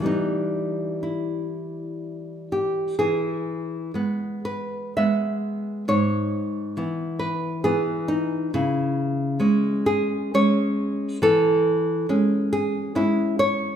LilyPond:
\new Staff \with { instrumentName = "Nylon-string guitar" } { \time 3/4 \key e \minor \tempo 4 = 66 << { dis'4 e'4. g'8 | \key e \major gis'4. b'8 e''4 | cis''4. b'8 gis'8 dis'8 | e'4. gis'8 cis''4 |
a'4. gis'8 e'8 cis''8 | } \\ { <e g b>2. | e4 <gis b>4 <gis b>4 | gis,4 <e b>4 <e b>4 | cis4 <gis cis'>4 <gis cis'>4 |
e4 <gis cis'>4 <gis cis'>4 | } >> }